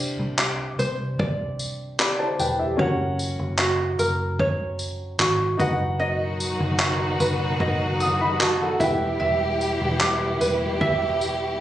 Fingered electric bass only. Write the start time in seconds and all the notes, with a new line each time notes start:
Already playing: C2
0.19 C2
0.79 C2
1.20 C2
2.39 E1
2.79 F#1
3.39 F#1
3.99 F#1
5.19 G#1
5.60 F#1
6.60 F#1
7.20 F#1
7.60 F#1
8.80 E1
9.21 E1
9.81 E1
10.41 E1